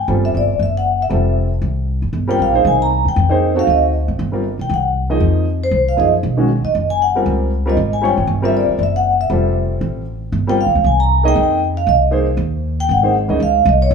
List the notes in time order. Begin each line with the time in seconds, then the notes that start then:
0.08 G1 G3 C4 F4 A4
0.25 E5
0.34 G1 D5
0.59 F#1 E5
0.77 F#5
1.02 E5
1.09 F1 G3 C4 F4 A4
1.62 C2
2.02 F#1
2.13 G1
2.28 G3 C4 F4 A#4 G5
2.39 A#1 F5
2.53 A#3 D#4 G#4 C5
2.65 C2 G#5
2.82 A#5
3.05 D#2 G5
3.16 F2
3.29 A#3 D#4 G#4 C5
3.55 C4 D#4 F#4 A4
3.59 F5
3.67 D2 D#5
4.08 G#1
4.19 G1
4.32 G3 C4 F4 A#4
4.59 B1 G5
4.69 C2
4.74 F#5
5.10 F3 A#3 D#4 G#4 D#5
5.20 F2
5.64 C5
5.71 C2
5.89 F5
5.97 F#2 F3 A#3 D#4 G#4 D#5
6.23 B1
6.37 D#3 G#3 C#4 F#4
6.64 D#5, muted upright bass stroke
6.75 F#1
6.90 G#5
7.02 F#5
7.15 G3 C4 F4 A#4
7.26 C#2
7.66 G3 C4 F4 A#4
7.70 D#5
7.77 G#1
7.93 G#5
8.01 G3 C4 F4 C#5 G5
8.17 G#1
8.27 G1
8.42 G3 C4 F4 A#4 E5
8.57 D5
8.68 muted upright bass stroke
8.79 F#1
8.83 E5
8.96 F#5
9.21 E5
9.30 F1 G3 C4 F4 A4
9.81 A1
10.32 G1
10.47 G3 C4 F4 A#4 G5
10.61 F5
10.66 A#1
10.75 C#2
10.84 C2 G#5
11.00 A#5
11.23 A#3 D#4 G#4 D#5
11.28 G5
11.35 F2
11.77 F5
11.87 C2 D#5
12.11 A#3 D#4 G#4 C5
12.37 D#2
12.80 G5
12.89 G#1 F#5
13.03 A#3 D#4 G#4 C5
13.28 D2 C#3 A#3 D#4 G#4 D#5
13.40 C#2 F5
13.65 C2 D#5
13.82 C#5
13.91 G#1